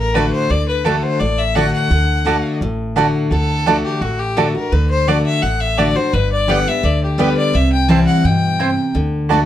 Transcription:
0.00 0.30 A1 medium
0.00 0.47 A2 medium
0.00 0.17 A#4 medium
0.14 0.49 D3 medium
0.14 0.24 A3 medium
0.14 0.49 A3 medium
0.14 0.49 D4 medium
0.14 0.24 F#4 medium
0.14 0.49 F#4 loud
0.14 0.32 B4 medium
0.14 0.24 D5 medium
0.14 0.25 A5 loud
0.32 0.52 C5 loud
0.50 1.01 D2 medium
0.50 0.84 D3 medium
0.50 0.68 D5 loud
0.68 0.86 B4 medium
0.84 1.19 D3 medium
0.84 0.94 A3 loud
0.84 1.19 A3 loud
0.84 1.19 D4 medium
0.84 0.95 F#4 loud
0.84 1.20 F#4 loud
0.84 1.04 A4 medium
0.84 0.95 D5 loud
0.84 0.95 A5 loud
1.03 1.21 C5 medium
1.19 1.71 A1 medium
1.19 1.88 A2 medium
1.19 1.39 D5 medium
1.38 1.57 E5 medium
1.55 1.89 D3 medium
1.55 1.65 A3 medium
1.55 1.89 A3 loud
1.55 1.90 D4 loud
1.55 1.65 F#4 loud
1.55 1.90 F#4 loud
1.55 1.65 D5 medium
1.55 1.73 F#5 loud
1.55 1.66 A5 loud
1.73 2.57 F#5 loud
1.91 2.41 D2 loud
1.91 2.23 D3 medium
2.25 2.59 D3 medium
2.25 2.59 A3 medium
2.25 2.35 A3 medium
2.25 2.60 D4 medium
2.25 2.36 F#4 loud
2.25 2.60 F#4 loud
2.25 2.36 D5 loud
2.25 2.36 A5 loud
2.61 3.12 A1 medium
2.61 3.29 A2 medium
2.96 3.30 D3 medium
2.96 3.06 A3 medium
2.96 3.30 A3 medium
2.96 3.30 D4 loud
2.96 3.06 F#4 loud
2.96 3.31 F#4 loud
2.96 3.06 D5 medium
2.96 3.06 A5 loud
3.31 3.82 D2 medium
3.31 3.65 D3 medium
3.31 3.81 A4 medium
3.66 4.00 D3 medium
3.66 3.76 A3 loud
3.66 4.00 A3 loud
3.66 4.01 D4 medium
3.66 3.76 F#4 medium
3.66 4.01 F#4 loud
3.66 3.76 D5 loud
3.66 3.77 A5 loud
3.84 4.03 G4 medium
4.01 4.52 A1 medium
4.01 4.69 A2 medium
4.01 4.21 F#4 medium
4.19 4.38 G4 medium
4.37 4.55 D3 loud
4.37 4.55 A3 medium
4.37 4.47 A3 medium
4.37 4.55 D4 loud
4.37 4.47 F#4 medium
4.37 4.53 F#4 loud
4.37 4.55 A4 medium
4.37 4.47 D5 loud
4.37 4.47 A5 loud
4.55 4.72 D4 medium
4.55 4.71 F#4 medium
4.55 4.73 A#4 medium
4.72 5.23 D2 medium
4.72 5.06 D3 medium
4.72 4.90 B4 medium
4.90 5.10 C5 loud
5.07 5.41 D3 medium
5.07 5.17 A3 medium
5.07 5.42 A3 medium
5.07 5.42 D4 medium
5.07 5.17 F#4 loud
5.07 5.42 F#4 medium
5.07 5.25 D5 medium
5.07 5.17 D5 loud
5.07 5.18 A5 loud
5.26 5.44 E5 loud
5.42 5.93 A1 medium
5.42 6.10 A2 medium
5.42 5.62 F#5 loud
5.61 5.79 E5 loud
5.78 5.96 D3 medium
5.78 5.87 A3 medium
5.78 5.96 A3 medium
5.78 5.96 D4 loud
5.78 5.88 F#4 medium
5.78 5.95 F#4 loud
5.78 5.98 D5 loud
5.78 5.88 D5 medium
5.78 5.88 A5 medium
5.96 6.14 D4 medium
5.96 6.13 F#4 medium
5.96 6.15 C5 loud
6.13 6.64 G1 loud
6.13 6.81 G2 medium
6.13 6.31 B4 medium
6.32 6.51 D5 loud
6.47 6.66 D3 medium
6.47 6.66 G3 medium
6.47 6.58 B3 medium
6.47 6.66 B3 medium
6.47 6.58 G4 loud
6.47 6.65 G4 medium
6.47 6.58 D5 loud
6.47 6.69 F#5 loud
6.47 6.58 G5 loud
6.67 6.84 B3 medium
6.67 6.83 G4 medium
6.67 6.86 E5 medium
6.83 7.34 D2 medium
6.83 7.17 D3 medium
6.83 7.03 D5 medium
7.04 7.21 G4 medium
7.18 7.52 D3 loud
7.18 7.52 G3 loud
7.18 7.28 B3 medium
7.18 7.53 B3 loud
7.18 7.28 G4 medium
7.18 7.53 G4 loud
7.18 7.37 B4 loud
7.18 7.29 D5 loud
7.18 7.29 G5 loud
7.37 7.56 D5 loud
7.53 8.05 C2 loud
7.53 8.21 C3 medium
7.53 7.72 E5 loud
7.72 7.90 G5 loud
7.88 8.22 E3 medium
7.88 8.23 G3 loud
7.88 7.99 C4 medium
7.88 8.23 C4 loud
7.88 7.99 E4 loud
7.88 8.23 E4 medium
7.88 7.99 C5 loud
7.88 7.99 G5 loud
7.88 8.06 A5 loud
8.06 8.26 F#5 loud
8.25 8.75 G2 medium
8.25 8.58 B2 medium
8.25 8.95 G5 loud
8.59 8.93 C3 medium
8.59 8.69 C4 medium
8.59 8.69 E4 medium
8.59 8.69 C5 medium
8.59 8.69 G5 loud
8.95 9.46 D2 medium
8.95 9.29 D3 medium
9.29 9.46 D3 medium
9.29 9.39 A3 loud
9.29 9.46 A3 medium
9.29 9.46 D4 medium
9.29 9.39 F#4 loud
9.29 9.46 F#4 loud
9.29 9.39 D5 loud
9.29 9.40 A5 loud

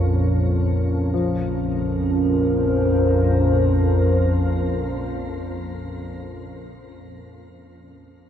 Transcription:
0.00 1.11 A#1 medium
0.00 1.12 F2 medium
0.00 1.10 C#4 medium
0.00 1.16 C#4 medium
0.00 1.12 F4 medium
0.00 1.12 A#4 medium
0.00 1.13 C#5 medium
1.11 6.08 A#1 medium
1.11 6.08 F2 medium
1.11 6.09 F3 soft
1.11 6.06 C#4 medium
1.30 6.25 F4 medium
1.50 6.45 A#4 medium
1.68 6.63 C5 medium

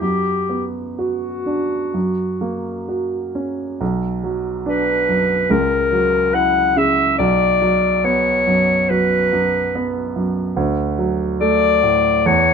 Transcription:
0.01 1.90 F#2 soft
0.01 0.65 G4 medium
0.49 1.27 B3 soft
0.98 1.75 F#4 soft
0.98 3.31 F#4 medium
1.46 1.94 D4 soft
1.94 3.76 F#2 soft
2.41 3.16 A#3 soft
2.88 3.63 F#4 soft
3.35 3.80 C#4 soft
3.81 5.46 B1 medium
4.24 4.91 F#3 soft
4.66 5.33 D4 soft
4.66 5.52 B4 medium
5.09 5.50 F#2 soft
5.50 7.15 C#2 medium
5.50 6.36 A#4 medium
5.92 6.60 F#3 medium
6.34 7.02 E4 soft
6.34 6.79 F#5 medium
6.76 7.19 C#3 medium
6.76 7.18 E5 medium
7.19 8.86 B1 medium
7.19 8.06 D5 medium
7.62 8.30 F#3 medium
8.04 8.73 B3 medium
8.04 8.91 C#5 medium
8.47 9.15 F#2 medium
8.90 9.58 F#3 medium
8.90 10.16 B4 medium
9.33 9.99 F#2 medium
9.75 10.41 B3 medium
10.16 10.57 F#2 medium
10.56 12.22 D2 medium
10.99 11.66 F#3 medium
11.40 12.09 A3 medium
11.40 12.28 D5 loud
11.83 12.26 A2 soft
12.26 12.54 E2 medium
12.26 12.54 C#5 medium

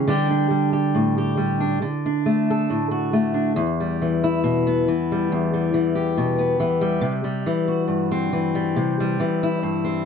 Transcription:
0.08 1.81 D3 medium
0.08 0.49 G3 medium
0.08 0.30 D4 medium
0.08 0.72 G4 medium
0.31 1.59 D4 medium
0.51 1.36 G3 medium
0.73 1.17 G4 medium
0.95 1.83 A2 medium
1.18 1.78 G4 medium
1.37 1.82 G3 medium
1.60 1.78 D4 medium
1.82 3.58 D3 medium
2.06 3.33 D4 medium
2.26 3.12 A3 medium
2.50 2.91 A4 soft
2.70 3.58 A2 medium
2.91 3.52 F#4 medium
3.13 3.52 A3 medium
3.34 3.52 D4 medium
3.56 5.31 E2 medium
3.80 5.11 G3 medium
4.02 4.88 E3 medium
4.24 5.95 E4 medium
4.44 4.88 B2 medium
4.67 6.37 B3 medium
4.88 5.73 E3 medium
5.12 5.53 G3 medium
5.32 7.03 E2 medium
5.54 6.81 G3 medium
5.74 6.59 E3 medium
5.95 7.67 G4 medium
6.18 6.60 B2 medium
6.38 7.03 B3 medium
6.60 6.98 E3 medium
6.81 7.24 G3 medium
7.01 7.45 C3 medium
7.24 8.55 G3 medium
7.46 8.32 E3 medium
7.68 9.39 F#4 medium
7.88 8.74 G2 medium
8.11 9.82 C4 medium
8.33 9.18 E3 medium
8.55 9.00 G3 medium
8.76 9.19 C3 medium
9.00 10.05 G3 medium
9.20 10.04 E3 medium
9.43 10.05 E4 medium
9.63 10.05 G2 medium
9.85 10.05 C4 medium

